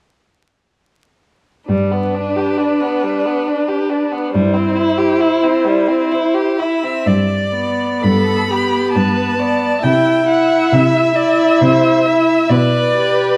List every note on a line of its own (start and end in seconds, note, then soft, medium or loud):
1.69 2.42 G2 soft
1.69 1.93 G3 soft
1.69 4.37 D4 soft
1.69 4.31 B4 soft
1.92 2.16 B3 soft
2.15 2.38 D4 soft
2.36 2.60 G4 soft
2.58 2.82 D4 soft
2.81 3.05 B3 soft
3.04 3.27 G3 soft
3.26 3.48 B3 soft
3.47 3.70 D4 soft
3.69 3.91 G4 soft
3.90 4.13 D4 soft
4.12 4.33 B3 soft
4.33 5.05 G2 soft
4.33 4.55 G3 soft
4.33 6.86 E4 soft
4.33 6.55 C5 soft
4.54 4.77 C4 soft
4.76 4.99 E4 soft
4.98 5.22 G4 soft
5.21 5.45 E4 soft
5.43 5.66 C4 soft
5.65 5.90 G3 soft
5.88 6.13 C4 soft
6.12 6.36 E4 soft
6.35 6.61 G4 soft
6.59 6.85 E4 soft
6.59 7.09 E5 soft
6.83 7.07 C4 soft
7.07 7.90 G2 soft
7.07 8.05 D5 soft
7.55 8.49 B3 soft
8.03 8.83 G2 soft
8.03 8.52 A4 soft
8.03 8.94 B5 soft
8.51 9.38 B3 soft
8.51 8.97 G4 soft
8.94 9.71 G2 soft
8.94 9.42 B4 soft
8.94 9.85 A5 soft
9.40 9.83 B3 soft
9.40 9.84 D5 soft
9.83 10.60 C3 soft
9.83 10.27 E4 soft
9.83 12.53 E5 soft
9.83 10.28 G5 soft
10.27 11.15 E4 soft
10.27 10.75 F#5 soft
10.72 11.49 C3 soft
10.72 11.18 E5 soft
11.16 12.04 E4 soft
11.16 11.63 D5 soft
11.61 12.37 C3 soft
11.61 12.07 C5 soft
12.06 12.50 E4 soft
12.06 12.51 E5 soft
12.50 13.29 B2 soft
12.50 13.37 B4 soft
12.50 13.37 D5 medium
12.97 13.37 G4 soft